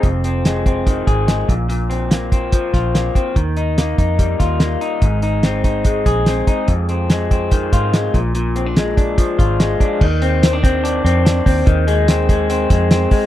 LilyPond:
<<
  \new Staff \with { instrumentName = "Clean electric guitar" } { \time 4/4 \key bes \mixolydian \tempo 4 = 144 f,8 c'8 aes8 c'8 ees8 aes'8 aes8 bes,8 | bes,8 c'8 bes8 c'8 f8 f'8 bes8 c'8 | ees8 ees'8 bes8 ees'8 g8 f'8 bes8 ees'8 | aes,8 ees'8 c'8 ees'8 aes8 aes'8 c'8 ees'8 |
f,8 c'8 aes8 c'8 ees8 f'8 aes8 bes,8 | bes,8 c'16 d'16 aes8 d'8 f8 f'8 aes8 d'8 | ees8 c'8 c'16 d'16 c'8 d'8 c'8 d'8 c'8 | ees8 aes8 c'8 aes8 c'8 aes8 c'8 aes8 | }
  \new Staff \with { instrumentName = "Fingered electric bass" } { \clef bass \time 4/4 \key bes \mixolydian f,,2~ f,,8 aes,,4 bes,,8~ | bes,,2~ bes,,8 bes,,4 r8 | ees,4. f,4 ees,4 r8 | aes,,2~ aes,,8 bes,,4 r8 |
f,2~ f,8 aes,4 bes,,8~ | bes,,2~ bes,,8 aes,,4 r8 | ees,2~ ees,8 f,4 ees,8 | ees,2~ ees,8 f,4 r8 | }
  \new DrumStaff \with { instrumentName = "Drums" } \drummode { \time 4/4 <hh bd>8 hh8 <hh sn>8 <hh bd>8 <hh bd>8 <hh bd>8 <hh sn>8 <hh bd>8 | hh8 hh8 <hh sn>8 <hh bd>8 <hh bd>8 <hh bd sn>8 <hh sn>8 <hh bd>8 | <hh bd>8 hh8 <hh sn>8 <hh bd>8 <hh bd>8 <hh bd sn>8 <hh sn>8 hh8 | <hh bd>8 hh8 <hh sn>8 <hh bd>8 <hh bd>8 <hh bd>8 <hh sn>8 <hh bd>8 |
<hh bd>8 hh8 <hh sn>8 <hh bd>8 <hh bd>8 <hh bd>8 <hh sn>8 <hh bd>8 | hh8 hh8 <hh sn>8 <hh bd>8 <hh bd>8 <hh bd>8 <hh sn>8 <hh bd>8 | <cymc bd>8 hh8 <hh sn>8 <hh bd>8 hh8 hh8 <hh sn>8 <hho bd>8 | <hh bd>8 hh8 <hh sn>8 <hh bd>8 hh8 <hh bd sn>8 <hh sn>8 <hho bd>8 | }
>>